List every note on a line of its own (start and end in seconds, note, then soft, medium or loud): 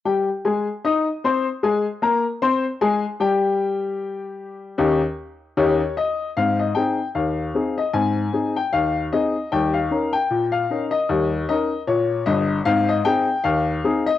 0.05 0.27 G3 medium
0.05 0.27 G4 medium
0.05 0.27 G5 medium
0.45 0.67 G#3 medium
0.45 0.67 G#4 medium
0.45 0.66 G#5 medium
0.85 1.06 D#4 medium
0.85 1.06 D#5 medium
0.85 1.06 D#6 medium
1.24 1.46 C4 medium
1.24 1.46 C5 medium
1.24 1.46 C6 medium
1.63 1.85 G#3 medium
1.63 1.85 G#4 medium
1.63 1.85 G#5 medium
2.02 2.24 A#3 medium
2.02 2.24 A#4 medium
2.02 2.24 A#5 medium
2.42 2.64 C4 medium
2.42 2.64 C5 medium
2.42 2.64 C6 medium
2.81 3.03 G#3 medium
2.81 3.03 G#4 medium
2.81 3.03 G#5 medium
3.20 4.94 G3 medium
3.20 4.77 G4 medium
3.20 4.94 G5 medium
4.78 5.00 D#2 medium
4.78 5.00 C#4 medium
4.78 5.00 D#4 medium
4.78 5.00 G4 medium
5.57 5.79 D#2 medium
5.57 5.79 C#4 medium
5.57 5.79 D#4 medium
5.57 5.79 G4 medium
5.57 5.95 C#5 medium
5.97 6.29 D#5 medium
6.37 6.70 G#2 medium
6.37 6.60 C4 soft
6.37 6.59 F5 medium
6.59 6.76 D#5 medium
6.75 6.98 C4 soft
6.75 6.98 D#4 soft
6.75 6.98 G#4 soft
6.75 7.07 G5 medium
7.15 7.49 D#2 medium
7.15 7.74 F5 medium
7.54 7.76 C4 soft
7.54 7.77 D#4 soft
7.54 7.77 G#4 medium
7.78 7.95 D#5 medium
7.94 8.27 G#2 medium
7.94 8.17 C4 soft
7.94 8.52 G#5 medium
8.33 8.55 C4 soft
8.33 8.55 D#4 soft
8.33 8.55 G#4 soft
8.56 8.73 G5 medium
8.73 9.06 D#2 medium
8.73 9.04 F5 medium
9.12 9.34 C4 soft
9.12 9.35 D#4 soft
9.12 9.35 G#4 soft
9.12 9.50 D#5 medium
9.52 9.85 D#2 medium
9.52 9.75 G3 soft
9.52 9.74 G5 medium
9.73 10.11 F5 medium
9.91 10.12 C#4 soft
9.91 10.12 D#4 soft
9.91 10.13 A#4 soft
10.13 10.44 G5 medium
10.30 10.64 A#2 medium
10.52 10.84 F5 medium
10.70 10.92 C#4 soft
10.70 10.92 D#4 soft
10.70 10.92 A#4 soft
10.91 11.45 D#5 medium
11.09 11.42 D#2 medium
11.09 11.32 G3 soft
11.49 11.70 C#4 soft
11.49 11.71 D#4 soft
11.49 11.71 A#4 medium
11.49 11.80 D#5 medium
11.87 12.21 A#2 medium
11.87 12.25 C#5 medium
12.26 12.58 G1 medium
12.26 12.58 G2 medium
12.26 12.58 D#5 medium
12.65 12.99 G#2 medium
12.65 12.89 C4 medium
12.65 12.88 F5 loud
12.89 13.06 D#5 medium
13.05 13.27 C4 medium
13.05 13.27 D#4 medium
13.05 13.28 G#4 medium
13.05 13.43 G5 medium
13.44 13.78 D#2 medium
13.44 14.03 F5 medium
13.84 14.06 C4 medium
13.84 14.06 D#4 medium
13.84 14.06 G#4 medium
14.06 14.18 D#5 medium